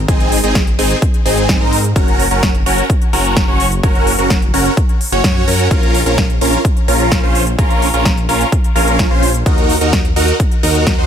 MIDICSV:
0, 0, Header, 1, 4, 480
1, 0, Start_track
1, 0, Key_signature, -5, "minor"
1, 0, Tempo, 468750
1, 88, Time_signature, 4, 2, 24, 8
1, 11332, End_track
2, 0, Start_track
2, 0, Title_t, "Supersaw synth"
2, 0, Program_c, 0, 81
2, 86, Note_on_c, 0, 60, 90
2, 86, Note_on_c, 0, 63, 84
2, 86, Note_on_c, 0, 68, 101
2, 388, Note_off_c, 0, 60, 0
2, 388, Note_off_c, 0, 63, 0
2, 388, Note_off_c, 0, 68, 0
2, 446, Note_on_c, 0, 60, 86
2, 446, Note_on_c, 0, 63, 78
2, 446, Note_on_c, 0, 68, 95
2, 635, Note_off_c, 0, 60, 0
2, 635, Note_off_c, 0, 63, 0
2, 635, Note_off_c, 0, 68, 0
2, 805, Note_on_c, 0, 60, 93
2, 805, Note_on_c, 0, 63, 86
2, 805, Note_on_c, 0, 68, 102
2, 995, Note_off_c, 0, 60, 0
2, 995, Note_off_c, 0, 63, 0
2, 995, Note_off_c, 0, 68, 0
2, 1285, Note_on_c, 0, 60, 82
2, 1285, Note_on_c, 0, 63, 77
2, 1285, Note_on_c, 0, 68, 90
2, 1618, Note_off_c, 0, 60, 0
2, 1618, Note_off_c, 0, 63, 0
2, 1618, Note_off_c, 0, 68, 0
2, 1645, Note_on_c, 0, 60, 75
2, 1645, Note_on_c, 0, 63, 71
2, 1645, Note_on_c, 0, 70, 82
2, 1834, Note_off_c, 0, 70, 0
2, 1835, Note_off_c, 0, 60, 0
2, 1835, Note_off_c, 0, 63, 0
2, 2004, Note_on_c, 0, 61, 90
2, 2004, Note_on_c, 0, 70, 103
2, 2005, Note_on_c, 0, 66, 83
2, 2307, Note_off_c, 0, 61, 0
2, 2307, Note_off_c, 0, 70, 0
2, 2308, Note_off_c, 0, 66, 0
2, 2365, Note_on_c, 0, 61, 88
2, 2365, Note_on_c, 0, 66, 76
2, 2365, Note_on_c, 0, 70, 96
2, 2555, Note_off_c, 0, 61, 0
2, 2555, Note_off_c, 0, 66, 0
2, 2555, Note_off_c, 0, 70, 0
2, 2725, Note_on_c, 0, 70, 103
2, 2726, Note_on_c, 0, 61, 95
2, 2726, Note_on_c, 0, 66, 86
2, 2915, Note_off_c, 0, 61, 0
2, 2915, Note_off_c, 0, 66, 0
2, 2915, Note_off_c, 0, 70, 0
2, 3206, Note_on_c, 0, 61, 83
2, 3206, Note_on_c, 0, 66, 74
2, 3206, Note_on_c, 0, 70, 93
2, 3538, Note_off_c, 0, 61, 0
2, 3538, Note_off_c, 0, 66, 0
2, 3538, Note_off_c, 0, 70, 0
2, 3565, Note_on_c, 0, 61, 77
2, 3565, Note_on_c, 0, 66, 73
2, 3565, Note_on_c, 0, 73, 82
2, 3755, Note_off_c, 0, 61, 0
2, 3755, Note_off_c, 0, 66, 0
2, 3755, Note_off_c, 0, 73, 0
2, 3926, Note_on_c, 0, 61, 92
2, 3926, Note_on_c, 0, 66, 86
2, 3926, Note_on_c, 0, 70, 102
2, 4228, Note_off_c, 0, 61, 0
2, 4228, Note_off_c, 0, 66, 0
2, 4228, Note_off_c, 0, 70, 0
2, 4286, Note_on_c, 0, 61, 85
2, 4286, Note_on_c, 0, 66, 76
2, 4286, Note_on_c, 0, 70, 94
2, 4475, Note_off_c, 0, 61, 0
2, 4475, Note_off_c, 0, 66, 0
2, 4475, Note_off_c, 0, 70, 0
2, 4645, Note_on_c, 0, 61, 95
2, 4645, Note_on_c, 0, 70, 99
2, 4646, Note_on_c, 0, 66, 84
2, 4835, Note_off_c, 0, 61, 0
2, 4835, Note_off_c, 0, 66, 0
2, 4835, Note_off_c, 0, 70, 0
2, 5246, Note_on_c, 0, 61, 92
2, 5246, Note_on_c, 0, 73, 106
2, 5247, Note_on_c, 0, 66, 86
2, 5338, Note_off_c, 0, 61, 0
2, 5338, Note_off_c, 0, 66, 0
2, 5338, Note_off_c, 0, 73, 0
2, 5366, Note_on_c, 0, 61, 96
2, 5366, Note_on_c, 0, 66, 85
2, 5366, Note_on_c, 0, 73, 105
2, 5578, Note_off_c, 0, 61, 0
2, 5578, Note_off_c, 0, 66, 0
2, 5578, Note_off_c, 0, 73, 0
2, 5607, Note_on_c, 0, 61, 97
2, 5607, Note_on_c, 0, 66, 88
2, 5607, Note_on_c, 0, 70, 109
2, 5811, Note_off_c, 0, 61, 0
2, 5811, Note_off_c, 0, 66, 0
2, 5811, Note_off_c, 0, 70, 0
2, 5847, Note_on_c, 0, 61, 87
2, 5847, Note_on_c, 0, 65, 85
2, 5847, Note_on_c, 0, 70, 99
2, 6149, Note_off_c, 0, 61, 0
2, 6149, Note_off_c, 0, 65, 0
2, 6149, Note_off_c, 0, 70, 0
2, 6206, Note_on_c, 0, 65, 77
2, 6206, Note_on_c, 0, 70, 93
2, 6207, Note_on_c, 0, 61, 86
2, 6395, Note_off_c, 0, 65, 0
2, 6395, Note_off_c, 0, 70, 0
2, 6396, Note_off_c, 0, 61, 0
2, 6566, Note_on_c, 0, 65, 84
2, 6567, Note_on_c, 0, 61, 94
2, 6567, Note_on_c, 0, 70, 102
2, 6756, Note_off_c, 0, 61, 0
2, 6756, Note_off_c, 0, 65, 0
2, 6756, Note_off_c, 0, 70, 0
2, 7046, Note_on_c, 0, 61, 83
2, 7046, Note_on_c, 0, 65, 77
2, 7046, Note_on_c, 0, 70, 88
2, 7378, Note_off_c, 0, 61, 0
2, 7378, Note_off_c, 0, 65, 0
2, 7378, Note_off_c, 0, 70, 0
2, 7407, Note_on_c, 0, 61, 77
2, 7407, Note_on_c, 0, 65, 70
2, 7407, Note_on_c, 0, 72, 84
2, 7596, Note_off_c, 0, 61, 0
2, 7596, Note_off_c, 0, 65, 0
2, 7596, Note_off_c, 0, 72, 0
2, 7767, Note_on_c, 0, 61, 91
2, 7767, Note_on_c, 0, 65, 83
2, 7767, Note_on_c, 0, 70, 96
2, 8069, Note_off_c, 0, 61, 0
2, 8069, Note_off_c, 0, 65, 0
2, 8069, Note_off_c, 0, 70, 0
2, 8127, Note_on_c, 0, 65, 77
2, 8128, Note_on_c, 0, 61, 85
2, 8128, Note_on_c, 0, 70, 96
2, 8316, Note_off_c, 0, 61, 0
2, 8316, Note_off_c, 0, 65, 0
2, 8316, Note_off_c, 0, 70, 0
2, 8487, Note_on_c, 0, 61, 93
2, 8487, Note_on_c, 0, 65, 86
2, 8487, Note_on_c, 0, 70, 101
2, 8676, Note_off_c, 0, 61, 0
2, 8676, Note_off_c, 0, 65, 0
2, 8676, Note_off_c, 0, 70, 0
2, 8966, Note_on_c, 0, 61, 83
2, 8966, Note_on_c, 0, 65, 78
2, 8966, Note_on_c, 0, 70, 92
2, 9298, Note_off_c, 0, 61, 0
2, 9298, Note_off_c, 0, 65, 0
2, 9298, Note_off_c, 0, 70, 0
2, 9328, Note_on_c, 0, 61, 79
2, 9328, Note_on_c, 0, 65, 70
2, 9328, Note_on_c, 0, 72, 87
2, 9516, Note_off_c, 0, 61, 0
2, 9516, Note_off_c, 0, 65, 0
2, 9516, Note_off_c, 0, 72, 0
2, 9687, Note_on_c, 0, 63, 91
2, 9688, Note_on_c, 0, 66, 83
2, 9688, Note_on_c, 0, 70, 97
2, 9989, Note_off_c, 0, 63, 0
2, 9989, Note_off_c, 0, 66, 0
2, 9989, Note_off_c, 0, 70, 0
2, 10047, Note_on_c, 0, 66, 77
2, 10047, Note_on_c, 0, 70, 95
2, 10048, Note_on_c, 0, 63, 86
2, 10236, Note_off_c, 0, 63, 0
2, 10236, Note_off_c, 0, 66, 0
2, 10236, Note_off_c, 0, 70, 0
2, 10406, Note_on_c, 0, 63, 93
2, 10406, Note_on_c, 0, 66, 85
2, 10406, Note_on_c, 0, 70, 101
2, 10595, Note_off_c, 0, 66, 0
2, 10595, Note_off_c, 0, 70, 0
2, 10596, Note_off_c, 0, 63, 0
2, 10886, Note_on_c, 0, 63, 81
2, 10886, Note_on_c, 0, 70, 93
2, 10887, Note_on_c, 0, 66, 77
2, 11218, Note_off_c, 0, 63, 0
2, 11218, Note_off_c, 0, 66, 0
2, 11218, Note_off_c, 0, 70, 0
2, 11247, Note_on_c, 0, 63, 76
2, 11247, Note_on_c, 0, 66, 70
2, 11247, Note_on_c, 0, 72, 87
2, 11332, Note_off_c, 0, 63, 0
2, 11332, Note_off_c, 0, 66, 0
2, 11332, Note_off_c, 0, 72, 0
2, 11332, End_track
3, 0, Start_track
3, 0, Title_t, "Detuned saw bass"
3, 0, Program_c, 1, 39
3, 86, Note_on_c, 1, 32, 98
3, 423, Note_off_c, 1, 32, 0
3, 447, Note_on_c, 1, 32, 103
3, 783, Note_off_c, 1, 32, 0
3, 806, Note_on_c, 1, 32, 104
3, 971, Note_off_c, 1, 32, 0
3, 1286, Note_on_c, 1, 32, 93
3, 1623, Note_off_c, 1, 32, 0
3, 1646, Note_on_c, 1, 44, 98
3, 1983, Note_off_c, 1, 44, 0
3, 2006, Note_on_c, 1, 30, 98
3, 2343, Note_off_c, 1, 30, 0
3, 2367, Note_on_c, 1, 30, 99
3, 2703, Note_off_c, 1, 30, 0
3, 2727, Note_on_c, 1, 30, 105
3, 2892, Note_off_c, 1, 30, 0
3, 3206, Note_on_c, 1, 30, 94
3, 3543, Note_off_c, 1, 30, 0
3, 3566, Note_on_c, 1, 30, 98
3, 3903, Note_off_c, 1, 30, 0
3, 3927, Note_on_c, 1, 30, 93
3, 4263, Note_off_c, 1, 30, 0
3, 4287, Note_on_c, 1, 30, 97
3, 4623, Note_off_c, 1, 30, 0
3, 4647, Note_on_c, 1, 30, 104
3, 4812, Note_off_c, 1, 30, 0
3, 5246, Note_on_c, 1, 30, 97
3, 5343, Note_off_c, 1, 30, 0
3, 5368, Note_on_c, 1, 42, 100
3, 5584, Note_off_c, 1, 42, 0
3, 5605, Note_on_c, 1, 42, 97
3, 5823, Note_off_c, 1, 42, 0
3, 5848, Note_on_c, 1, 34, 98
3, 6184, Note_off_c, 1, 34, 0
3, 6209, Note_on_c, 1, 34, 97
3, 6544, Note_off_c, 1, 34, 0
3, 6568, Note_on_c, 1, 34, 106
3, 6732, Note_off_c, 1, 34, 0
3, 7047, Note_on_c, 1, 34, 92
3, 7384, Note_off_c, 1, 34, 0
3, 7408, Note_on_c, 1, 34, 93
3, 7744, Note_off_c, 1, 34, 0
3, 7768, Note_on_c, 1, 34, 99
3, 8104, Note_off_c, 1, 34, 0
3, 8129, Note_on_c, 1, 34, 99
3, 8464, Note_off_c, 1, 34, 0
3, 8490, Note_on_c, 1, 34, 100
3, 8653, Note_off_c, 1, 34, 0
3, 8969, Note_on_c, 1, 34, 94
3, 9305, Note_off_c, 1, 34, 0
3, 9329, Note_on_c, 1, 34, 98
3, 9664, Note_off_c, 1, 34, 0
3, 9688, Note_on_c, 1, 39, 98
3, 10024, Note_off_c, 1, 39, 0
3, 10049, Note_on_c, 1, 39, 98
3, 10384, Note_off_c, 1, 39, 0
3, 10408, Note_on_c, 1, 39, 104
3, 10572, Note_off_c, 1, 39, 0
3, 10888, Note_on_c, 1, 39, 92
3, 11224, Note_off_c, 1, 39, 0
3, 11248, Note_on_c, 1, 39, 100
3, 11332, Note_off_c, 1, 39, 0
3, 11332, End_track
4, 0, Start_track
4, 0, Title_t, "Drums"
4, 86, Note_on_c, 9, 36, 122
4, 88, Note_on_c, 9, 42, 79
4, 189, Note_off_c, 9, 36, 0
4, 190, Note_off_c, 9, 42, 0
4, 207, Note_on_c, 9, 42, 37
4, 310, Note_off_c, 9, 42, 0
4, 327, Note_on_c, 9, 46, 122
4, 429, Note_off_c, 9, 46, 0
4, 447, Note_on_c, 9, 42, 54
4, 549, Note_off_c, 9, 42, 0
4, 566, Note_on_c, 9, 36, 126
4, 567, Note_on_c, 9, 42, 84
4, 568, Note_on_c, 9, 38, 127
4, 669, Note_off_c, 9, 36, 0
4, 669, Note_off_c, 9, 42, 0
4, 670, Note_off_c, 9, 38, 0
4, 688, Note_on_c, 9, 42, 38
4, 790, Note_off_c, 9, 42, 0
4, 807, Note_on_c, 9, 46, 113
4, 909, Note_off_c, 9, 46, 0
4, 927, Note_on_c, 9, 42, 56
4, 1029, Note_off_c, 9, 42, 0
4, 1046, Note_on_c, 9, 36, 123
4, 1046, Note_on_c, 9, 42, 81
4, 1149, Note_off_c, 9, 36, 0
4, 1149, Note_off_c, 9, 42, 0
4, 1167, Note_on_c, 9, 42, 39
4, 1270, Note_off_c, 9, 42, 0
4, 1288, Note_on_c, 9, 46, 114
4, 1390, Note_off_c, 9, 46, 0
4, 1408, Note_on_c, 9, 42, 53
4, 1510, Note_off_c, 9, 42, 0
4, 1526, Note_on_c, 9, 36, 121
4, 1528, Note_on_c, 9, 42, 80
4, 1529, Note_on_c, 9, 38, 123
4, 1628, Note_off_c, 9, 36, 0
4, 1630, Note_off_c, 9, 42, 0
4, 1631, Note_off_c, 9, 38, 0
4, 1767, Note_on_c, 9, 46, 109
4, 1870, Note_off_c, 9, 46, 0
4, 1888, Note_on_c, 9, 42, 54
4, 1990, Note_off_c, 9, 42, 0
4, 2006, Note_on_c, 9, 36, 123
4, 2008, Note_on_c, 9, 42, 79
4, 2109, Note_off_c, 9, 36, 0
4, 2111, Note_off_c, 9, 42, 0
4, 2128, Note_on_c, 9, 42, 37
4, 2231, Note_off_c, 9, 42, 0
4, 2248, Note_on_c, 9, 46, 117
4, 2350, Note_off_c, 9, 46, 0
4, 2368, Note_on_c, 9, 42, 53
4, 2470, Note_off_c, 9, 42, 0
4, 2487, Note_on_c, 9, 36, 124
4, 2487, Note_on_c, 9, 42, 81
4, 2488, Note_on_c, 9, 38, 127
4, 2589, Note_off_c, 9, 36, 0
4, 2590, Note_off_c, 9, 42, 0
4, 2591, Note_off_c, 9, 38, 0
4, 2607, Note_on_c, 9, 42, 36
4, 2710, Note_off_c, 9, 42, 0
4, 2728, Note_on_c, 9, 46, 117
4, 2830, Note_off_c, 9, 46, 0
4, 2848, Note_on_c, 9, 42, 55
4, 2950, Note_off_c, 9, 42, 0
4, 2967, Note_on_c, 9, 36, 127
4, 2968, Note_on_c, 9, 42, 76
4, 3069, Note_off_c, 9, 36, 0
4, 3070, Note_off_c, 9, 42, 0
4, 3088, Note_on_c, 9, 42, 38
4, 3190, Note_off_c, 9, 42, 0
4, 3207, Note_on_c, 9, 46, 115
4, 3310, Note_off_c, 9, 46, 0
4, 3327, Note_on_c, 9, 42, 52
4, 3430, Note_off_c, 9, 42, 0
4, 3447, Note_on_c, 9, 36, 122
4, 3447, Note_on_c, 9, 42, 79
4, 3448, Note_on_c, 9, 38, 123
4, 3549, Note_off_c, 9, 36, 0
4, 3549, Note_off_c, 9, 42, 0
4, 3550, Note_off_c, 9, 38, 0
4, 3686, Note_on_c, 9, 46, 111
4, 3789, Note_off_c, 9, 46, 0
4, 3807, Note_on_c, 9, 42, 53
4, 3909, Note_off_c, 9, 42, 0
4, 3926, Note_on_c, 9, 42, 71
4, 3927, Note_on_c, 9, 36, 121
4, 4029, Note_off_c, 9, 36, 0
4, 4029, Note_off_c, 9, 42, 0
4, 4047, Note_on_c, 9, 42, 35
4, 4150, Note_off_c, 9, 42, 0
4, 4167, Note_on_c, 9, 46, 119
4, 4270, Note_off_c, 9, 46, 0
4, 4287, Note_on_c, 9, 42, 51
4, 4389, Note_off_c, 9, 42, 0
4, 4407, Note_on_c, 9, 36, 123
4, 4407, Note_on_c, 9, 42, 79
4, 4408, Note_on_c, 9, 38, 117
4, 4509, Note_off_c, 9, 36, 0
4, 4510, Note_off_c, 9, 42, 0
4, 4511, Note_off_c, 9, 38, 0
4, 4528, Note_on_c, 9, 42, 34
4, 4630, Note_off_c, 9, 42, 0
4, 4648, Note_on_c, 9, 46, 110
4, 4750, Note_off_c, 9, 46, 0
4, 4768, Note_on_c, 9, 42, 52
4, 4870, Note_off_c, 9, 42, 0
4, 4887, Note_on_c, 9, 36, 127
4, 4888, Note_on_c, 9, 42, 79
4, 4989, Note_off_c, 9, 36, 0
4, 4990, Note_off_c, 9, 42, 0
4, 5008, Note_on_c, 9, 42, 36
4, 5111, Note_off_c, 9, 42, 0
4, 5128, Note_on_c, 9, 46, 112
4, 5231, Note_off_c, 9, 46, 0
4, 5248, Note_on_c, 9, 42, 48
4, 5351, Note_off_c, 9, 42, 0
4, 5367, Note_on_c, 9, 36, 121
4, 5369, Note_on_c, 9, 42, 77
4, 5370, Note_on_c, 9, 38, 123
4, 5469, Note_off_c, 9, 36, 0
4, 5471, Note_off_c, 9, 42, 0
4, 5472, Note_off_c, 9, 38, 0
4, 5609, Note_on_c, 9, 46, 106
4, 5711, Note_off_c, 9, 46, 0
4, 5729, Note_on_c, 9, 42, 51
4, 5831, Note_off_c, 9, 42, 0
4, 5847, Note_on_c, 9, 36, 119
4, 5848, Note_on_c, 9, 42, 75
4, 5950, Note_off_c, 9, 36, 0
4, 5951, Note_off_c, 9, 42, 0
4, 5968, Note_on_c, 9, 42, 37
4, 6071, Note_off_c, 9, 42, 0
4, 6088, Note_on_c, 9, 46, 109
4, 6190, Note_off_c, 9, 46, 0
4, 6208, Note_on_c, 9, 42, 53
4, 6311, Note_off_c, 9, 42, 0
4, 6328, Note_on_c, 9, 36, 118
4, 6329, Note_on_c, 9, 42, 81
4, 6330, Note_on_c, 9, 38, 119
4, 6430, Note_off_c, 9, 36, 0
4, 6431, Note_off_c, 9, 42, 0
4, 6432, Note_off_c, 9, 38, 0
4, 6449, Note_on_c, 9, 42, 34
4, 6551, Note_off_c, 9, 42, 0
4, 6568, Note_on_c, 9, 46, 112
4, 6670, Note_off_c, 9, 46, 0
4, 6688, Note_on_c, 9, 42, 55
4, 6791, Note_off_c, 9, 42, 0
4, 6808, Note_on_c, 9, 36, 122
4, 6808, Note_on_c, 9, 42, 76
4, 6910, Note_off_c, 9, 36, 0
4, 6910, Note_off_c, 9, 42, 0
4, 6929, Note_on_c, 9, 42, 37
4, 7031, Note_off_c, 9, 42, 0
4, 7048, Note_on_c, 9, 46, 110
4, 7150, Note_off_c, 9, 46, 0
4, 7168, Note_on_c, 9, 42, 50
4, 7270, Note_off_c, 9, 42, 0
4, 7288, Note_on_c, 9, 36, 117
4, 7288, Note_on_c, 9, 42, 75
4, 7289, Note_on_c, 9, 38, 115
4, 7390, Note_off_c, 9, 36, 0
4, 7390, Note_off_c, 9, 42, 0
4, 7391, Note_off_c, 9, 38, 0
4, 7528, Note_on_c, 9, 46, 111
4, 7630, Note_off_c, 9, 46, 0
4, 7648, Note_on_c, 9, 42, 52
4, 7751, Note_off_c, 9, 42, 0
4, 7768, Note_on_c, 9, 36, 117
4, 7769, Note_on_c, 9, 42, 78
4, 7870, Note_off_c, 9, 36, 0
4, 7871, Note_off_c, 9, 42, 0
4, 7890, Note_on_c, 9, 42, 37
4, 7992, Note_off_c, 9, 42, 0
4, 8010, Note_on_c, 9, 46, 109
4, 8112, Note_off_c, 9, 46, 0
4, 8130, Note_on_c, 9, 42, 54
4, 8232, Note_off_c, 9, 42, 0
4, 8248, Note_on_c, 9, 36, 114
4, 8249, Note_on_c, 9, 42, 80
4, 8250, Note_on_c, 9, 38, 118
4, 8350, Note_off_c, 9, 36, 0
4, 8352, Note_off_c, 9, 38, 0
4, 8352, Note_off_c, 9, 42, 0
4, 8370, Note_on_c, 9, 42, 36
4, 8472, Note_off_c, 9, 42, 0
4, 8489, Note_on_c, 9, 46, 104
4, 8592, Note_off_c, 9, 46, 0
4, 8609, Note_on_c, 9, 42, 58
4, 8712, Note_off_c, 9, 42, 0
4, 8728, Note_on_c, 9, 36, 117
4, 8730, Note_on_c, 9, 42, 80
4, 8831, Note_off_c, 9, 36, 0
4, 8832, Note_off_c, 9, 42, 0
4, 8850, Note_on_c, 9, 42, 39
4, 8953, Note_off_c, 9, 42, 0
4, 8970, Note_on_c, 9, 46, 109
4, 9072, Note_off_c, 9, 46, 0
4, 9089, Note_on_c, 9, 42, 52
4, 9192, Note_off_c, 9, 42, 0
4, 9208, Note_on_c, 9, 36, 111
4, 9209, Note_on_c, 9, 42, 78
4, 9210, Note_on_c, 9, 38, 109
4, 9311, Note_off_c, 9, 36, 0
4, 9311, Note_off_c, 9, 42, 0
4, 9312, Note_off_c, 9, 38, 0
4, 9449, Note_on_c, 9, 46, 106
4, 9551, Note_off_c, 9, 46, 0
4, 9569, Note_on_c, 9, 42, 54
4, 9671, Note_off_c, 9, 42, 0
4, 9688, Note_on_c, 9, 36, 115
4, 9689, Note_on_c, 9, 42, 83
4, 9790, Note_off_c, 9, 36, 0
4, 9791, Note_off_c, 9, 42, 0
4, 9808, Note_on_c, 9, 42, 37
4, 9911, Note_off_c, 9, 42, 0
4, 9928, Note_on_c, 9, 46, 105
4, 10031, Note_off_c, 9, 46, 0
4, 10048, Note_on_c, 9, 42, 54
4, 10151, Note_off_c, 9, 42, 0
4, 10168, Note_on_c, 9, 36, 113
4, 10168, Note_on_c, 9, 42, 82
4, 10169, Note_on_c, 9, 38, 120
4, 10271, Note_off_c, 9, 36, 0
4, 10271, Note_off_c, 9, 38, 0
4, 10271, Note_off_c, 9, 42, 0
4, 10289, Note_on_c, 9, 42, 38
4, 10391, Note_off_c, 9, 42, 0
4, 10408, Note_on_c, 9, 46, 100
4, 10510, Note_off_c, 9, 46, 0
4, 10527, Note_on_c, 9, 42, 58
4, 10630, Note_off_c, 9, 42, 0
4, 10648, Note_on_c, 9, 36, 116
4, 10648, Note_on_c, 9, 42, 85
4, 10750, Note_off_c, 9, 36, 0
4, 10750, Note_off_c, 9, 42, 0
4, 10768, Note_on_c, 9, 42, 40
4, 10870, Note_off_c, 9, 42, 0
4, 10888, Note_on_c, 9, 46, 106
4, 10990, Note_off_c, 9, 46, 0
4, 11008, Note_on_c, 9, 42, 55
4, 11110, Note_off_c, 9, 42, 0
4, 11128, Note_on_c, 9, 36, 105
4, 11128, Note_on_c, 9, 42, 82
4, 11129, Note_on_c, 9, 38, 116
4, 11230, Note_off_c, 9, 36, 0
4, 11231, Note_off_c, 9, 42, 0
4, 11232, Note_off_c, 9, 38, 0
4, 11332, End_track
0, 0, End_of_file